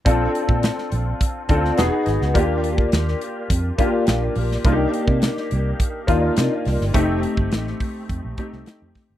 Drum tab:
HH |x-x-x-x-x-x-x-x-|x-x-x-x-x-x-x-o-|x-x-x-x-x-x-x-o-|x-x-x-o-x-x-x-o-|
SD |----oo-----oo-oo|----oo------o--o|----oo------o-oo|----oo-----oo-o-|
BD |o--o----o-o-----|o--o----o-o-----|o--o----o-o-----|o--o--o-o-o---o-|